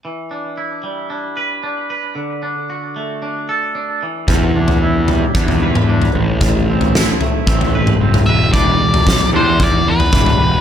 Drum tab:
SD |----------------|----------------|----------------|----o-----------|
T2 |----------------|----------------|-----------o----|-----------o-o--|
FT |----------------|----------------|o--o--o--o---o--|o--o--o--o---o--|
BD |----------------|----------------|o-------o-------|o-------o-------|

SD |----o-----------|
T2 |------------o---|
FT |o--o-o--o--o-o--|
BD |o---o---o---o---|